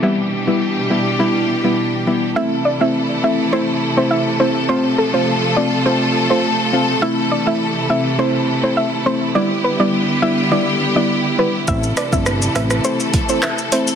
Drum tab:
HH |----------------|----------------|----------------|----------------|
SH |----------------|----------------|----------------|----------------|
CP |----------------|----------------|----------------|----------------|
SD |----------------|----------------|----------------|----------------|
BD |----------------|----------------|----------------|----------------|

HH |----------------|--x---x---x---x-|
SH |----------------|xxxxxxxxxxxxxxxx|
CP |----------------|------------x---|
SD |----------------|--r-r-rr----r---|
BD |----------------|o--o------o-----|